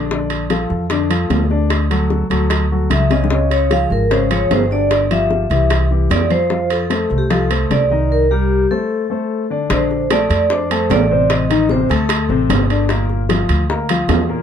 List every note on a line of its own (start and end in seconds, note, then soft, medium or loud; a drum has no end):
0.00 0.64 A#1 medium
0.11 0.44 D3 medium
0.11 0.44 D4 medium
0.11 0.44 D5 medium
0.11 high bongo medium
0.30 high bongo soft
0.30 high timbale medium
0.50 0.83 F3 medium
0.50 0.83 F4 medium
0.50 0.83 A4 medium
0.50 high bongo medium
0.50 high timbale medium
0.70 1.26 F2 medium
0.70 high bongo soft
0.90 1.07 D3 medium
0.90 1.07 D4 medium
0.90 1.07 D5 medium
0.90 high bongo medium
0.90 high timbale medium
1.10 1.43 F3 medium
1.10 1.43 F4 medium
1.10 1.43 A4 medium
1.10 high timbale medium
1.30 2.24 D2 medium
1.30 high bongo soft
1.30 low bongo medium
1.30 high timbale medium
1.30 low timbale medium
1.50 1.83 D3 medium
1.50 1.83 D4 medium
1.50 1.84 D5 medium
1.50 high bongo soft
1.70 high bongo medium
1.70 high timbale medium
1.90 2.24 F#3 medium
1.90 2.24 F#4 medium
1.90 2.24 A4 medium
1.90 high bongo soft
1.90 high timbale medium
2.10 high bongo medium
2.30 2.86 D2 medium
2.30 2.63 F#3 medium
2.30 2.64 F#4 medium
2.30 2.64 A4 medium
2.30 high bongo soft
2.30 high timbale medium
2.50 high bongo medium
2.50 high timbale medium
2.71 3.04 F#3 medium
2.71 3.04 F#4 medium
2.71 3.04 A4 medium
2.90 3.85 C#2 medium
2.90 3.12 E5 medium
2.90 high bongo soft
2.90 low bongo medium
2.90 high timbale medium
3.10 3.27 C#3 medium
3.10 3.28 C#4 medium
3.10 3.28 C#5 medium
3.10 3.53 D#5 loud
3.10 high bongo medium
3.10 high timbale medium
3.24 low bongo medium
3.31 3.64 C#3 medium
3.31 3.64 C#4 medium
3.31 3.65 C#5 medium
3.31 high bongo medium
3.50 3.72 C#5 medium
3.50 high bongo soft
3.50 high timbale medium
3.71 4.04 F3 medium
3.71 4.04 F4 medium
3.71 4.04 G#4 medium
3.71 3.92 F5 medium
3.71 high bongo medium
3.71 high timbale medium
3.90 4.46 G#1 medium
3.90 4.12 A#4 medium
3.90 high bongo soft
4.10 4.27 C#3 medium
4.10 4.27 C#4 medium
4.10 4.20 C5 medium
4.10 4.27 C#5 medium
4.10 high bongo medium
4.10 high timbale medium
4.30 4.63 F3 medium
4.30 4.64 F4 medium
4.30 4.64 G#4 medium
4.30 4.41 C#5 medium
4.30 high timbale medium
4.50 5.45 G1 medium
4.50 4.60 C5 medium
4.50 high bongo soft
4.50 low bongo medium
4.50 high timbale medium
4.50 low timbale medium
4.71 5.04 D3 medium
4.71 5.04 D4 medium
4.71 5.04 D5 medium
4.71 5.09 D5 medium
4.71 high bongo soft
4.91 high bongo medium
4.91 high timbale medium
5.11 5.44 F3 medium
5.11 5.44 F4 medium
5.11 5.44 G4 medium
5.11 5.87 E5 medium
5.11 high bongo soft
5.11 high timbale medium
5.31 high bongo medium
5.50 6.06 C2 medium
5.50 5.84 E3 medium
5.50 5.84 E4 medium
5.50 5.84 G4 medium
5.50 high bongo soft
5.50 high timbale medium
5.70 high bongo medium
5.70 high timbale medium
5.91 6.24 E3 medium
5.91 6.24 E4 medium
5.91 6.24 G4 medium
6.10 7.04 F2 medium
6.10 6.20 D5 medium
6.10 high bongo soft
6.10 low bongo medium
6.10 high timbale medium
6.10 low timbale medium
6.30 6.47 F3 medium
6.30 6.47 F4 medium
6.30 6.72 C5 medium
6.30 6.47 F5 medium
6.30 high bongo soft
6.30 high timbale medium
6.50 6.83 F3 medium
6.50 6.84 F4 medium
6.50 6.84 F5 medium
6.50 high bongo medium
6.70 7.08 A4 medium
6.70 high bongo soft
6.70 high timbale medium
6.90 7.23 A3 medium
6.90 7.23 A4 medium
6.90 7.24 C5 medium
6.90 high bongo medium
6.90 high timbale medium
7.10 7.67 C2 medium
7.10 high bongo soft
7.18 7.31 G4 medium
7.30 7.47 F3 medium
7.30 7.47 F4 medium
7.30 7.72 A4 medium
7.30 7.47 F5 medium
7.30 high bongo medium
7.30 high timbale medium
7.50 7.83 A3 medium
7.50 7.83 A4 medium
7.50 7.83 C5 medium
7.50 high timbale medium
7.70 8.64 C2 medium
7.70 8.12 D5 medium
7.70 high bongo soft
7.70 low bongo medium
7.70 high timbale medium
7.90 8.24 D#3 medium
7.90 8.24 D#4 medium
7.90 8.24 D#5 medium
7.90 high bongo soft
8.12 8.30 A#4 medium
8.31 8.64 G3 medium
8.31 8.64 G4 medium
8.31 8.72 G4 medium
8.31 8.64 A#4 medium
8.71 9.04 A3 medium
8.71 9.04 A4 medium
8.71 9.47 A4 medium
8.71 9.04 C5 medium
9.10 9.43 A3 medium
9.10 9.43 A4 medium
9.10 9.44 C5 medium
9.50 9.67 D3 medium
9.50 9.67 D4 medium
9.50 9.67 D5 medium
9.70 10.26 A#1 medium
9.70 10.03 D3 medium
9.70 10.04 D4 medium
9.70 10.09 C5 medium
9.70 10.04 D5 medium
9.70 high bongo medium
9.70 high timbale medium
9.91 high bongo soft
10.11 10.43 A3 medium
10.11 10.43 A4 medium
10.11 10.48 D5 medium
10.11 10.44 A5 medium
10.11 high bongo medium
10.11 high timbale medium
10.11 low timbale medium
10.30 10.86 F2 medium
10.30 high bongo soft
10.30 high timbale medium
10.50 10.67 D4 medium
10.50 10.88 C5 medium
10.50 10.67 D5 medium
10.50 10.67 D6 medium
10.50 high bongo medium
10.70 11.03 A3 medium
10.70 11.04 A4 medium
10.70 11.04 A5 medium
10.70 high bongo soft
10.70 high timbale medium
10.90 11.84 A1 medium
10.90 11.32 D5 loud
10.90 high bongo soft
10.90 low bongo medium
10.90 high timbale medium
10.90 low timbale medium
11.11 11.43 C3 medium
11.11 11.43 C4 medium
11.11 11.44 C5 medium
11.30 11.68 D#5 loud
11.30 high bongo medium
11.30 high timbale medium
11.50 11.67 D#3 medium
11.50 11.67 D#4 medium
11.50 11.67 D#5 medium
11.50 high bongo soft
11.50 high timbale medium
11.69 11.87 C3 medium
11.69 11.87 C4 medium
11.69 11.79 C5 medium
11.69 11.87 C5 medium
11.69 high bongo medium
11.69 low timbale medium
11.89 12.27 D2 medium
11.89 12.23 A3 medium
11.89 12.23 A4 medium
11.89 12.46 A4 medium
11.89 12.23 A5 medium
11.89 high bongo soft
11.89 high timbale medium
12.09 high bongo medium
12.09 high timbale loud
12.29 12.48 A1 medium
12.29 12.62 C3 medium
12.29 12.63 C4 medium
12.29 12.63 C5 medium
12.29 high bongo soft
12.49 13.43 G1 medium
12.49 high bongo soft
12.49 low bongo medium
12.49 high timbale loud
12.49 low timbale medium
12.70 12.86 D3 medium
12.70 12.86 D4 medium
12.70 12.86 D5 medium
12.70 high timbale medium
12.89 13.22 A#2 medium
12.89 13.23 A#3 medium
12.89 13.23 A#4 medium
12.89 high bongo medium
12.89 high timbale medium
13.09 high bongo soft
13.29 13.62 F3 medium
13.29 13.62 F4 medium
13.29 13.62 F5 medium
13.29 high bongo medium
13.29 high timbale medium
13.29 low timbale medium
13.49 14.05 D2 medium
13.49 high bongo soft
13.49 high timbale medium
13.70 13.86 A#3 medium
13.70 13.86 A#4 medium
13.70 13.86 A#5 medium
13.70 high bongo medium
13.89 14.22 F3 medium
13.89 14.23 F4 medium
13.89 14.23 F5 medium
13.89 high bongo soft
13.89 high timbale medium
14.08 14.42 E2 medium
14.08 high bongo soft
14.08 low bongo medium
14.08 high timbale medium
14.08 low timbale medium
14.29 14.42 A#2 medium
14.29 14.42 A#3 medium
14.29 14.42 A#4 medium